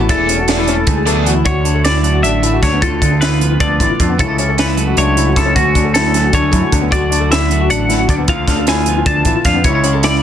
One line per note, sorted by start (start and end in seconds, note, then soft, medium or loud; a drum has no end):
0.00 0.10 B2 medium
0.00 0.66 A3 medium
0.00 0.11 D4 medium
0.00 0.08 E4 medium
0.00 0.10 A4 medium
0.09 0.83 E1 medium
0.09 0.86 E3 medium
0.09 0.35 B3 medium
0.09 0.29 D4 medium
0.09 0.29 E4 medium
0.09 0.35 E4 medium
0.09 0.35 G#4 loud
0.09 1.27 A4 medium
0.09 0.35 D5 medium
0.09 kick medium
0.09 closed hi-hat medium
0.29 0.39 C#4 medium
0.29 0.47 D4 medium
0.29 closed hi-hat medium
0.39 0.59 F#4 medium
0.48 0.74 B3 medium
0.48 0.67 D4 medium
0.48 0.74 E4 medium
0.48 0.74 G#4 medium
0.48 0.74 D5 loud
0.48 snare loud
0.48 closed hi-hat medium
0.58 0.68 E4 medium
0.67 2.02 A3 medium
0.67 0.78 C#4 medium
0.67 1.44 D4 medium
0.67 closed hi-hat medium
0.78 0.97 E4 medium
0.86 1.42 D2 medium
0.86 1.06 G#3 medium
0.86 kick loud
0.86 closed hi-hat medium
0.97 1.07 G#4 medium
1.06 1.25 F#3 medium
1.06 1.33 B3 medium
1.06 1.33 E4 medium
1.06 1.32 G#4 medium
1.06 1.26 A4 medium
1.06 1.32 D5 medium
1.06 closed hi-hat medium
1.25 1.46 E3 medium
1.25 1.36 F#4 medium
1.25 closed hi-hat medium
1.35 1.46 E4 medium
1.44 2.24 D2 medium
1.44 2.79 D3 medium
1.44 1.84 D4 medium
1.44 1.65 F#4 medium
1.44 1.82 C#5 medium
1.44 kick medium
1.44 closed hi-hat medium
1.64 1.75 D4 medium
1.64 2.82 F#4 medium
1.64 closed hi-hat medium
1.75 1.85 A4 medium
1.85 2.22 D4 soft
1.85 2.04 E4 medium
1.85 2.23 D5 medium
1.85 snare medium
1.85 closed hi-hat medium
2.03 2.80 F#3 medium
2.03 2.42 A3 medium
2.03 closed hi-hat medium
2.13 2.24 F#4 medium
2.23 2.59 A1 medium
2.23 2.62 D4 medium
2.23 2.43 D4 medium
2.23 2.60 E5 medium
2.23 closed hi-hat medium
2.42 2.79 A2 medium
2.42 3.41 A3 medium
2.42 2.53 E4 medium
2.42 closed hi-hat medium
2.53 2.63 F#4 medium
2.63 2.81 D2 medium
2.63 2.73 D4 medium
2.63 2.80 D4 medium
2.63 2.83 C#5 medium
2.63 kick medium
2.63 snare soft
2.63 closed hi-hat medium
2.73 2.82 B3 medium
2.81 3.00 D2 loud
2.81 4.16 D3 medium
2.81 3.02 F4 medium
2.81 3.00 F4 medium
2.81 3.23 A4 medium
2.81 kick medium
2.81 closed hi-hat medium
3.01 3.57 D2 medium
3.01 3.11 D4 medium
3.01 3.21 F4 medium
3.01 kick medium
3.01 closed hi-hat medium
3.12 3.22 A4 medium
3.21 3.41 E4 medium
3.21 3.59 F4 medium
3.21 3.60 B4 medium
3.21 snare loud
3.21 closed hi-hat medium
3.41 4.17 F3 medium
3.41 3.79 B3 medium
3.41 closed hi-hat medium
3.51 3.61 F4 medium
3.60 3.78 D2 medium
3.60 3.80 D4 medium
3.60 3.98 F4 medium
3.60 4.01 D5 medium
3.60 kick loud
3.60 closed hi-hat medium
3.79 3.89 A1 medium
3.79 4.16 A2 medium
3.79 4.17 B3 medium
3.79 3.90 E4 medium
3.79 kick medium
3.79 closed hi-hat medium
3.90 4.00 F4 medium
4.00 4.21 F2 medium
4.00 4.10 D4 medium
4.00 4.17 F4 medium
4.00 kick medium
4.00 closed hi-hat medium
4.09 4.19 B3 medium
4.18 4.93 C#2 medium
4.18 4.77 C#3 medium
4.18 4.29 C#4 medium
4.18 4.39 E4 medium
4.18 4.60 A4 medium
4.18 kick loud
4.18 closed hi-hat medium
4.29 4.38 E4 soft
4.38 4.49 C#4 medium
4.38 4.57 E4 medium
4.38 closed hi-hat medium
4.49 4.58 A4 medium
4.58 4.68 C#4 medium
4.58 4.78 E4 medium
4.58 4.98 B4 medium
4.58 snare loud
4.58 closed hi-hat medium
4.68 4.97 E4 soft
4.77 6.14 F#3 medium
4.77 5.18 A3 medium
4.77 closed hi-hat medium
4.87 4.97 F#4 medium
4.97 5.33 C#2 medium
4.97 5.17 D4 medium
4.97 5.37 E4 medium
4.97 5.38 C#5 medium
4.97 closed hi-hat medium
5.17 5.54 C#3 medium
5.17 6.15 A3 medium
5.17 5.26 E4 medium
5.17 closed hi-hat medium
5.26 5.36 F#4 medium
5.36 5.54 C#2 medium
5.36 5.46 E4 medium
5.36 5.54 E4 medium
5.36 5.55 A4 medium
5.36 kick medium
5.36 snare soft
5.36 closed hi-hat medium
5.46 5.56 C#4 medium
5.55 5.74 D2 medium
5.55 6.52 D3 medium
5.55 5.76 C#4 medium
5.55 5.75 F#4 medium
5.55 5.92 F#4 medium
5.55 kick medium
5.55 closed hi-hat medium
5.75 6.30 D2 medium
5.75 5.95 C#4 medium
5.75 5.85 D4 medium
5.75 kick medium
5.75 closed hi-hat medium
5.85 5.95 A4 medium
5.94 6.33 C#4 medium
5.94 6.14 E4 medium
5.94 6.35 A4 medium
5.94 snare loud
5.94 closed hi-hat medium
6.14 6.90 F#3 medium
6.14 6.53 A3 medium
6.14 snare soft
6.14 closed hi-hat medium
6.24 6.34 F#4 medium
6.33 6.51 D2 medium
6.33 6.71 C#4 medium
6.33 6.53 D4 medium
6.33 6.75 C#5 medium
6.33 kick loud
6.33 closed hi-hat medium
6.52 6.62 F#2 medium
6.52 6.91 D3 medium
6.52 6.92 A3 medium
6.52 6.63 E4 medium
6.52 kick medium
6.52 closed hi-hat medium
6.62 6.72 F#4 medium
6.72 6.90 D2 medium
6.72 6.92 C#4 medium
6.72 6.82 D4 medium
6.72 kick medium
6.72 closed hi-hat medium
6.82 6.92 B3 medium
6.91 7.71 D2 medium
6.91 8.26 D3 medium
6.91 7.50 F#3 medium
6.91 7.52 A3 medium
6.91 7.31 D4 medium
6.91 7.11 F#4 medium
6.91 7.31 D5 medium
6.91 kick medium
6.91 closed hi-hat medium
7.11 7.21 D4 medium
7.11 8.29 F#4 medium
7.11 closed hi-hat medium
7.20 7.31 A4 medium
7.30 7.70 D4 medium
7.30 7.50 E4 medium
7.30 7.70 E5 medium
7.30 snare loud
7.30 closed hi-hat medium
7.51 8.27 F#3 medium
7.51 7.91 A3 medium
7.51 closed hi-hat medium
7.60 7.70 F#4 medium
7.70 8.06 A1 medium
7.70 7.90 D4 medium
7.70 8.10 D4 medium
7.70 8.11 F#5 loud
7.70 closed hi-hat medium
7.89 8.27 A2 medium
7.89 8.88 A3 soft
7.89 7.99 E4 medium
7.89 snare soft
7.89 closed hi-hat medium
7.99 8.09 F#4 medium
8.08 8.27 D2 medium
8.08 8.18 D4 medium
8.08 8.27 D4 medium
8.08 8.15 D5 medium
8.08 kick medium
8.08 closed hi-hat medium
8.18 8.28 B3 medium
8.28 8.46 D2 loud
8.28 9.63 D3 medium
8.28 8.48 F4 medium
8.28 8.68 F4 medium
8.28 8.65 F5 loud
8.28 kick loud
8.28 closed hi-hat medium
8.48 9.02 D2 medium
8.48 8.58 D4 medium
8.48 9.84 A4 medium
8.48 kick medium
8.48 snare soft
8.48 closed hi-hat medium
8.58 8.68 A4 medium
8.67 8.87 E4 medium
8.67 9.06 F4 medium
8.67 9.06 G#5 loud
8.67 snare loud
8.67 closed hi-hat medium
8.86 9.63 F3 medium
8.86 9.26 B3 medium
8.86 closed hi-hat medium
8.97 9.07 F4 medium
9.06 9.24 D2 medium
9.06 9.26 D4 medium
9.06 9.46 F4 medium
9.06 9.45 A5 loud
9.06 kick loud
9.06 closed hi-hat medium
9.25 9.35 A1 medium
9.25 9.63 A2 medium
9.25 9.63 B3 medium
9.25 9.36 E4 medium
9.25 kick medium
9.25 closed hi-hat medium
9.36 9.45 F4 medium
9.45 9.66 F2 medium
9.45 9.55 D4 medium
9.45 9.63 F4 medium
9.45 9.64 F5 medium
9.45 kick medium
9.45 snare soft
9.45 closed hi-hat medium
9.55 9.65 B3 medium
9.64 10.23 C#2 loud
9.64 10.23 C#3 medium
9.64 9.75 C#4 soft
9.64 9.84 E4 medium
9.64 10.05 C#5 loud
9.64 kick loud
9.64 closed hi-hat medium
9.75 10.02 E4 medium
9.84 9.94 C#4 medium
9.84 9.93 F#4 medium
9.84 closed hi-hat medium
9.93 10.23 A4 medium
9.93 10.04 A4 medium
10.03 10.23 E4 medium
10.03 10.23 D5 medium
10.03 snare loud
10.03 closed hi-hat medium